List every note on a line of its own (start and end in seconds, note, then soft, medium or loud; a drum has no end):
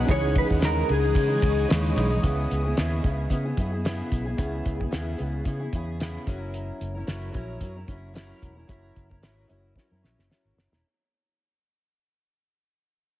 0.06 0.42 C#2 loud
0.06 0.32 C#3 medium
0.06 0.34 E3 medium
0.06 0.34 G#3 medium
0.06 2.18 C#4 medium
0.06 2.19 D#4 medium
0.06 2.20 E4 medium
0.06 2.21 C#5 medium
0.06 2.21 D#5 medium
0.06 2.21 D#6 medium
0.06 kick loud
0.06 ride medium
0.10 0.35 D#4 medium
0.10 2.20 G#4 medium
0.10 0.37 C#5 loud
0.33 0.58 C#3 medium
0.33 0.60 E3 medium
0.33 0.61 G#3 medium
0.33 0.61 D#4 medium
0.33 kick loud
0.33 ride medium
0.38 0.45 B4 loud
0.50 0.81 D#2 medium
0.50 kick medium
0.60 0.86 C#3 medium
0.60 0.87 E3 medium
0.60 0.88 G#3 medium
0.60 0.89 D#4 medium
0.60 snare loud
0.60 ride medium
0.65 0.89 A#4 medium
0.87 1.11 C#2 loud
0.87 1.03 C#3 medium
0.87 1.03 E3 medium
0.87 1.02 G#3 medium
0.87 1.01 D#4 medium
0.87 ride medium
0.91 1.67 G#4 medium
1.02 1.14 E3 soft
1.02 1.15 G#3 soft
1.02 1.15 D#4 medium
1.13 1.29 C#3 medium
1.13 1.37 C#3 loud
1.13 1.30 E3 medium
1.13 1.29 G#3 medium
1.13 1.27 D#4 medium
1.13 kick loud
1.13 ride medium
1.28 1.68 E3 soft
1.28 1.68 G#3 soft
1.28 1.68 D#4 medium
1.42 1.64 C#2 medium
1.42 kick loud
1.42 ride medium
1.68 1.91 D#2 medium
1.68 1.94 C#3 medium
1.68 1.95 E3 loud
1.68 1.96 G#3 loud
1.68 1.97 D#4 loud
1.68 snare loud
1.68 ride medium
1.95 2.18 B1 loud
1.95 2.10 C#3 medium
1.95 2.11 E3 medium
1.95 2.10 G#3 medium
1.95 2.08 D#4 medium
1.95 ride medium
2.10 2.24 E3 medium
2.10 2.23 G#3 medium
2.10 2.22 D#4 medium
2.22 2.45 C#2 medium
2.22 2.64 C#3 medium
2.22 2.65 B3 medium
2.22 2.65 E4 medium
2.22 2.63 G#4 medium
2.22 kick medium
2.22 closed hi-hat medium
2.51 2.72 C#2 medium
2.51 closed hi-hat medium
2.64 2.76 B3 soft
2.64 2.76 E4 medium
2.64 2.76 G#4 medium
2.76 2.99 D#2 medium
2.76 3.01 C#3 medium
2.76 3.03 B3 medium
2.76 3.04 E4 medium
2.76 3.05 G#4 medium
2.76 snare medium
2.76 closed hi-hat medium
3.02 3.26 C#2 medium
3.02 3.29 C#3 medium
3.02 3.30 B3 medium
3.02 3.31 E4 medium
3.02 3.32 G#4 medium
3.02 kick medium
3.02 closed hi-hat medium
3.30 3.45 C#3 medium
3.30 3.52 C#3 medium
3.30 3.46 B3 medium
3.30 3.45 E4 medium
3.30 3.43 G#4 medium
3.30 kick medium
3.30 closed hi-hat medium
3.45 3.58 B3 soft
3.45 3.58 E4 soft
3.45 3.57 G#4 medium
3.57 4.01 F#2 medium
3.57 3.72 C#3 medium
3.57 3.73 B3 medium
3.57 3.72 E4 medium
3.57 3.71 G#4 medium
3.57 kick medium
3.57 closed hi-hat medium
3.72 3.84 B3 soft
3.72 3.85 E4 soft
3.72 3.84 G#4 soft
3.84 4.26 C#3 medium
3.84 4.26 B3 medium
3.84 4.26 E4 medium
3.84 4.24 G#4 medium
3.84 snare loud
3.84 closed hi-hat medium
4.12 4.33 B1 medium
4.12 kick medium
4.12 closed hi-hat medium
4.25 4.37 B3 soft
4.25 4.38 E4 medium
4.25 4.38 G#4 medium
4.37 4.60 C#2 medium
4.37 4.79 C#3 medium
4.37 4.80 B3 medium
4.37 4.80 E4 medium
4.37 4.78 G#4 medium
4.37 kick loud
4.37 closed hi-hat medium
4.66 4.87 C#2 medium
4.66 kick medium
4.66 closed hi-hat medium
4.79 4.91 B3 soft
4.79 4.92 E4 soft
4.79 4.92 G#4 medium
4.79 kick medium
4.91 5.14 D#2 medium
4.91 5.17 C#3 medium
4.91 5.18 B3 medium
4.91 5.19 E4 medium
4.91 5.20 G#4 medium
4.91 snare medium
4.91 closed hi-hat medium
5.18 5.41 C#2 medium
5.18 5.43 C#3 medium
5.18 5.44 B3 medium
5.18 5.46 E4 medium
5.18 5.46 G#4 medium
5.18 closed hi-hat medium
5.44 5.60 C#3 medium
5.44 5.67 C#3 medium
5.44 5.61 B3 medium
5.44 5.61 E4 medium
5.44 5.58 G#4 medium
5.44 kick medium
5.44 closed hi-hat medium
5.59 5.72 B3 soft
5.59 5.73 E4 medium
5.59 5.72 G#4 medium
5.72 6.16 E2 medium
5.72 5.98 C#3 medium
5.72 5.99 B3 medium
5.72 6.00 E4 medium
5.72 6.01 G#4 medium
5.72 kick medium
5.72 closed hi-hat medium
6.00 6.27 C#3 medium
6.00 6.27 B3 medium
6.00 6.27 E4 medium
6.00 6.28 G#4 medium
6.00 snare medium
6.00 closed hi-hat medium
6.26 6.70 F#1 medium
6.26 7.00 F#3 medium
6.26 6.98 C#4 medium
6.26 6.96 E4 medium
6.26 6.94 A#4 medium
6.26 kick loud
6.26 closed hi-hat medium
6.54 closed hi-hat medium
6.81 7.02 F#1 medium
6.81 closed hi-hat medium
6.95 7.07 C#4 soft
6.95 7.07 E4 medium
6.95 7.07 A#4 medium
7.07 7.29 F#1 medium
7.07 7.31 F#3 medium
7.07 7.33 C#4 medium
7.07 7.34 E4 medium
7.07 7.35 A#4 medium
7.07 snare medium
7.07 closed hi-hat medium
7.32 7.56 A#1 medium
7.32 7.58 F#3 medium
7.32 7.61 C#4 medium
7.32 7.61 E4 medium
7.32 7.62 A#4 medium
7.32 kick medium
7.32 closed hi-hat medium
7.60 7.83 F#2 medium
7.60 7.75 F#3 medium
7.60 7.76 C#4 medium
7.60 7.76 E4 medium
7.60 7.74 A#4 medium
7.60 kick medium
7.60 closed hi-hat medium
7.75 7.87 C#4 soft
7.75 7.88 E4 medium
7.75 7.88 A#4 medium
7.87 8.31 F#1 medium
7.87 8.13 F#3 medium
7.87 8.14 C#4 medium
7.87 8.15 E4 medium
7.87 8.16 A#4 medium
7.87 kick medium
7.87 closed hi-hat medium
8.14 8.56 F#3 medium
8.14 8.57 C#4 medium
8.14 8.56 E4 medium
8.14 8.54 A#4 medium
8.14 snare medium
8.14 closed hi-hat medium
8.42 8.64 E1 medium
8.42 kick medium
8.42 closed hi-hat medium
8.56 8.67 C#4 soft
8.56 8.68 E4 soft
8.56 8.68 A#4 medium
8.67 8.90 F#1 medium
8.67 9.10 F#3 medium
8.67 9.10 C#4 medium
8.67 9.10 E4 medium
8.67 9.08 A#4 medium
8.67 kick loud
8.67 closed hi-hat medium
8.96 9.22 F#1 medium
8.96 kick medium
8.96 closed hi-hat medium
9.09 9.22 E4 soft
9.09 9.22 A#4 medium
9.09 kick medium
9.13 9.21 C#4 soft
9.22 9.44 G#1 medium
9.22 9.47 F#3 medium
9.22 9.48 C#4 medium
9.22 9.49 E4 medium
9.22 9.50 A#4 medium
9.22 snare medium
9.22 closed hi-hat medium
9.48 9.71 F#1 medium
9.48 9.74 F#3 medium
9.48 9.76 C#4 medium
9.48 9.77 E4 medium
9.48 9.77 A#4 medium
9.48 closed hi-hat medium
9.75 9.91 F#3 medium
9.75 9.91 C#4 medium
9.75 9.92 E4 medium
9.75 9.90 A#4 medium
9.75 kick medium
9.75 snare soft
9.91 10.01 F#2 medium
9.91 10.02 C#4 soft
9.91 10.03 E4 soft
9.91 10.03 A#4 medium
10.02 10.15 A#1 medium
10.02 10.29 F#3 medium
10.02 10.29 C#4 medium
10.02 10.30 E4 medium
10.02 10.31 A#4 medium
10.02 snare medium
10.18 10.28 F#1 medium
10.18 snare soft
10.30 10.72 F#3 medium
10.30 10.72 C#4 medium
10.30 10.72 E4 medium
10.30 10.71 A#4 medium
10.30 snare medium
10.45 10.55 G#1 medium
10.58 snare medium
10.72 10.81 E1 medium
10.72 10.86 C#4 soft
10.72 10.85 E4 medium
10.72 10.84 A#4 soft
10.72 snare medium